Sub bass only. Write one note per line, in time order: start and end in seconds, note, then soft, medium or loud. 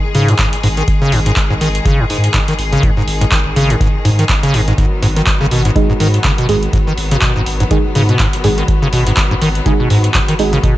0.15 0.34 G#2 medium
0.64 0.83 G#1 medium
1.12 1.31 G#1 loud
1.51 1.58 G#1 loud
1.61 1.80 G#1 medium
2.10 2.29 G#2 medium
2.59 2.78 G#1 medium
3.08 3.26 G#1 loud
3.46 3.54 G#1 loud
3.56 3.75 G#1 medium
4.05 4.24 G#2 medium
4.54 4.73 G#1 medium
5.03 5.22 G#1 medium
5.41 5.49 G#1 loud
5.51 5.70 G#1 medium
6.00 6.19 G#2 medium
6.49 6.68 G#1 medium
6.98 7.17 G#1 loud
7.36 7.44 G#1 loud
7.47 7.66 G#1 medium
7.95 8.14 G#2 medium
8.44 8.63 G#1 medium
8.93 9.12 G#1 medium
9.31 9.39 G#1 loud
9.42 9.61 G#1 medium
9.90 10.09 G#2 medium
10.39 10.58 G#1 medium